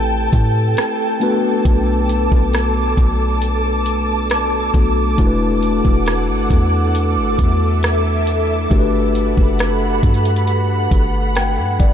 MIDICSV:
0, 0, Header, 1, 5, 480
1, 0, Start_track
1, 0, Tempo, 882353
1, 899, Time_signature, 4, 2, 24, 8
1, 6493, End_track
2, 0, Start_track
2, 0, Title_t, "Ambient pad"
2, 0, Program_c, 0, 92
2, 0, Note_on_c, 0, 69, 80
2, 0, Note_on_c, 0, 79, 76
2, 0, Note_on_c, 0, 81, 89
2, 643, Note_off_c, 0, 79, 0
2, 643, Note_off_c, 0, 81, 0
2, 660, Note_on_c, 0, 81, 73
2, 661, Note_on_c, 0, 86, 87
2, 2798, Note_off_c, 0, 69, 0
2, 2798, Note_off_c, 0, 81, 0
2, 2818, Note_on_c, 0, 69, 80
2, 4718, Note_off_c, 0, 86, 0
2, 4741, Note_on_c, 0, 83, 95
2, 6493, Note_off_c, 0, 69, 0
2, 6493, Note_off_c, 0, 83, 0
2, 6493, End_track
3, 0, Start_track
3, 0, Title_t, "Tine electric piano"
3, 0, Program_c, 1, 4
3, 0, Control_c, 1, 64, 127
3, 0, Note_on_c, 1, 57, 69
3, 0, Note_on_c, 1, 60, 66
3, 0, Note_on_c, 1, 64, 64
3, 0, Note_on_c, 1, 67, 67
3, 0, Note_on_c, 1, 71, 74
3, 634, Note_off_c, 1, 57, 0
3, 636, Note_off_c, 1, 60, 0
3, 638, Note_off_c, 1, 64, 0
3, 641, Note_off_c, 1, 67, 0
3, 642, Note_off_c, 1, 71, 0
3, 652, Note_on_c, 1, 57, 72
3, 655, Note_on_c, 1, 59, 65
3, 660, Note_on_c, 1, 62, 62
3, 664, Note_on_c, 1, 66, 66
3, 667, Control_c, 1, 64, 0
3, 669, Note_on_c, 1, 71, 81
3, 748, Control_c, 1, 64, 127
3, 2553, Note_off_c, 1, 57, 0
3, 2555, Note_off_c, 1, 59, 0
3, 2558, Note_off_c, 1, 62, 0
3, 2560, Note_off_c, 1, 66, 0
3, 2562, Note_off_c, 1, 71, 0
3, 2577, Note_on_c, 1, 57, 56
3, 2579, Note_on_c, 1, 59, 50
3, 2582, Note_on_c, 1, 62, 48
3, 2584, Note_on_c, 1, 66, 50
3, 2586, Note_on_c, 1, 69, 63
3, 2806, Note_off_c, 1, 57, 0
3, 2810, Note_off_c, 1, 62, 0
3, 2813, Note_on_c, 1, 57, 70
3, 2817, Note_on_c, 1, 62, 68
3, 2819, Note_off_c, 1, 59, 0
3, 2819, Note_off_c, 1, 66, 0
3, 2821, Note_on_c, 1, 64, 65
3, 2822, Note_off_c, 1, 69, 0
3, 2825, Note_on_c, 1, 66, 66
3, 2826, Control_c, 1, 64, 0
3, 2829, Note_on_c, 1, 70, 64
3, 2859, Note_off_c, 1, 70, 0
3, 2865, Note_on_c, 1, 71, 77
3, 2925, Control_c, 1, 64, 127
3, 4714, Note_off_c, 1, 57, 0
3, 4716, Note_off_c, 1, 62, 0
3, 4718, Note_off_c, 1, 64, 0
3, 4720, Note_off_c, 1, 66, 0
3, 4730, Note_on_c, 1, 57, 72
3, 4735, Note_on_c, 1, 62, 66
3, 4739, Note_on_c, 1, 66, 64
3, 4740, Note_off_c, 1, 71, 0
3, 4744, Note_on_c, 1, 67, 69
3, 4746, Control_c, 1, 64, 0
3, 4747, Note_on_c, 1, 70, 60
3, 4778, Note_off_c, 1, 70, 0
3, 4783, Note_on_c, 1, 71, 81
3, 4856, Control_c, 1, 64, 127
3, 6180, Note_on_c, 1, 79, 70
3, 6291, Note_off_c, 1, 79, 0
3, 6298, Note_on_c, 1, 78, 58
3, 6410, Note_off_c, 1, 78, 0
3, 6420, Note_on_c, 1, 74, 67
3, 6493, Note_off_c, 1, 57, 0
3, 6493, Note_off_c, 1, 62, 0
3, 6493, Note_off_c, 1, 66, 0
3, 6493, Note_off_c, 1, 67, 0
3, 6493, Note_off_c, 1, 71, 0
3, 6493, Note_off_c, 1, 74, 0
3, 6493, End_track
4, 0, Start_track
4, 0, Title_t, "808-style bass"
4, 0, Program_c, 2, 38
4, 0, Note_on_c, 2, 33, 102
4, 160, Note_off_c, 2, 33, 0
4, 179, Note_on_c, 2, 45, 101
4, 409, Note_off_c, 2, 45, 0
4, 900, Note_on_c, 2, 35, 105
4, 1245, Note_off_c, 2, 35, 0
4, 1261, Note_on_c, 2, 35, 100
4, 1606, Note_off_c, 2, 35, 0
4, 1619, Note_on_c, 2, 35, 101
4, 2557, Note_off_c, 2, 35, 0
4, 2580, Note_on_c, 2, 35, 96
4, 2810, Note_off_c, 2, 35, 0
4, 2821, Note_on_c, 2, 28, 102
4, 3165, Note_off_c, 2, 28, 0
4, 3183, Note_on_c, 2, 28, 102
4, 3420, Note_on_c, 2, 31, 93
4, 3428, Note_off_c, 2, 28, 0
4, 3534, Note_off_c, 2, 31, 0
4, 3539, Note_on_c, 2, 40, 102
4, 3900, Note_on_c, 2, 31, 96
4, 3908, Note_off_c, 2, 40, 0
4, 4014, Note_off_c, 2, 31, 0
4, 4019, Note_on_c, 2, 40, 109
4, 4717, Note_off_c, 2, 40, 0
4, 4739, Note_on_c, 2, 31, 109
4, 5085, Note_off_c, 2, 31, 0
4, 5100, Note_on_c, 2, 30, 98
4, 5445, Note_off_c, 2, 30, 0
4, 5457, Note_on_c, 2, 43, 100
4, 5919, Note_off_c, 2, 43, 0
4, 5937, Note_on_c, 2, 31, 110
4, 6299, Note_on_c, 2, 43, 90
4, 6307, Note_off_c, 2, 31, 0
4, 6413, Note_off_c, 2, 43, 0
4, 6418, Note_on_c, 2, 31, 98
4, 6493, Note_off_c, 2, 31, 0
4, 6493, End_track
5, 0, Start_track
5, 0, Title_t, "Drums"
5, 178, Note_on_c, 9, 36, 82
5, 179, Note_on_c, 9, 42, 78
5, 233, Note_off_c, 9, 36, 0
5, 233, Note_off_c, 9, 42, 0
5, 419, Note_on_c, 9, 42, 66
5, 426, Note_on_c, 9, 37, 117
5, 474, Note_off_c, 9, 42, 0
5, 480, Note_off_c, 9, 37, 0
5, 659, Note_on_c, 9, 42, 67
5, 714, Note_off_c, 9, 42, 0
5, 899, Note_on_c, 9, 36, 108
5, 899, Note_on_c, 9, 42, 71
5, 954, Note_off_c, 9, 36, 0
5, 954, Note_off_c, 9, 42, 0
5, 1139, Note_on_c, 9, 42, 63
5, 1193, Note_off_c, 9, 42, 0
5, 1261, Note_on_c, 9, 36, 89
5, 1315, Note_off_c, 9, 36, 0
5, 1378, Note_on_c, 9, 42, 64
5, 1385, Note_on_c, 9, 37, 108
5, 1433, Note_off_c, 9, 42, 0
5, 1439, Note_off_c, 9, 37, 0
5, 1618, Note_on_c, 9, 36, 94
5, 1619, Note_on_c, 9, 42, 60
5, 1672, Note_off_c, 9, 36, 0
5, 1674, Note_off_c, 9, 42, 0
5, 1859, Note_on_c, 9, 42, 78
5, 1914, Note_off_c, 9, 42, 0
5, 2099, Note_on_c, 9, 42, 82
5, 2154, Note_off_c, 9, 42, 0
5, 2339, Note_on_c, 9, 42, 63
5, 2345, Note_on_c, 9, 37, 116
5, 2393, Note_off_c, 9, 42, 0
5, 2399, Note_off_c, 9, 37, 0
5, 2579, Note_on_c, 9, 36, 96
5, 2580, Note_on_c, 9, 42, 66
5, 2634, Note_off_c, 9, 36, 0
5, 2634, Note_off_c, 9, 42, 0
5, 2819, Note_on_c, 9, 42, 74
5, 2820, Note_on_c, 9, 36, 111
5, 2873, Note_off_c, 9, 42, 0
5, 2874, Note_off_c, 9, 36, 0
5, 3060, Note_on_c, 9, 42, 65
5, 3114, Note_off_c, 9, 42, 0
5, 3181, Note_on_c, 9, 36, 81
5, 3236, Note_off_c, 9, 36, 0
5, 3299, Note_on_c, 9, 42, 62
5, 3305, Note_on_c, 9, 37, 103
5, 3353, Note_off_c, 9, 42, 0
5, 3360, Note_off_c, 9, 37, 0
5, 3538, Note_on_c, 9, 36, 91
5, 3540, Note_on_c, 9, 42, 61
5, 3593, Note_off_c, 9, 36, 0
5, 3594, Note_off_c, 9, 42, 0
5, 3780, Note_on_c, 9, 42, 80
5, 3834, Note_off_c, 9, 42, 0
5, 4018, Note_on_c, 9, 36, 85
5, 4020, Note_on_c, 9, 42, 80
5, 4073, Note_off_c, 9, 36, 0
5, 4074, Note_off_c, 9, 42, 0
5, 4259, Note_on_c, 9, 42, 62
5, 4265, Note_on_c, 9, 37, 114
5, 4313, Note_off_c, 9, 42, 0
5, 4320, Note_off_c, 9, 37, 0
5, 4499, Note_on_c, 9, 42, 66
5, 4554, Note_off_c, 9, 42, 0
5, 4738, Note_on_c, 9, 36, 110
5, 4739, Note_on_c, 9, 42, 73
5, 4793, Note_off_c, 9, 36, 0
5, 4793, Note_off_c, 9, 42, 0
5, 4978, Note_on_c, 9, 42, 62
5, 5033, Note_off_c, 9, 42, 0
5, 5100, Note_on_c, 9, 36, 86
5, 5154, Note_off_c, 9, 36, 0
5, 5218, Note_on_c, 9, 42, 63
5, 5224, Note_on_c, 9, 37, 108
5, 5272, Note_off_c, 9, 42, 0
5, 5279, Note_off_c, 9, 37, 0
5, 5456, Note_on_c, 9, 36, 92
5, 5457, Note_on_c, 9, 42, 51
5, 5511, Note_off_c, 9, 36, 0
5, 5512, Note_off_c, 9, 42, 0
5, 5517, Note_on_c, 9, 42, 51
5, 5572, Note_off_c, 9, 42, 0
5, 5577, Note_on_c, 9, 42, 50
5, 5632, Note_off_c, 9, 42, 0
5, 5638, Note_on_c, 9, 42, 51
5, 5692, Note_off_c, 9, 42, 0
5, 5697, Note_on_c, 9, 42, 79
5, 5752, Note_off_c, 9, 42, 0
5, 5937, Note_on_c, 9, 36, 88
5, 5938, Note_on_c, 9, 42, 80
5, 5991, Note_off_c, 9, 36, 0
5, 5992, Note_off_c, 9, 42, 0
5, 6177, Note_on_c, 9, 42, 63
5, 6183, Note_on_c, 9, 37, 109
5, 6231, Note_off_c, 9, 42, 0
5, 6238, Note_off_c, 9, 37, 0
5, 6417, Note_on_c, 9, 36, 94
5, 6417, Note_on_c, 9, 42, 66
5, 6472, Note_off_c, 9, 36, 0
5, 6472, Note_off_c, 9, 42, 0
5, 6493, End_track
0, 0, End_of_file